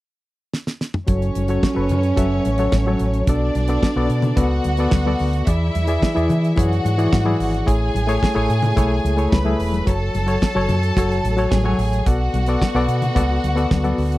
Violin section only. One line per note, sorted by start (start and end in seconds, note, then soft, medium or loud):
1.08 3.24 C#4 medium
1.08 3.24 C#5 medium
3.27 4.35 D4 medium
3.27 4.35 D5 medium
4.37 5.45 F#4 medium
4.37 5.45 F#5 medium
5.47 6.55 E4 medium
5.47 6.55 E5 medium
6.58 7.65 F#4 medium
6.58 7.65 F#5 medium
7.68 9.29 G#4 medium
7.68 9.29 G#5 loud
9.33 9.86 B4 medium
9.33 9.86 B5 medium
9.87 11.48 A4 medium
9.87 11.48 A5 medium
11.51 12.05 G#4 medium
11.51 12.05 G#5 medium
12.06 14.18 F#4 medium
12.06 14.18 F#5 medium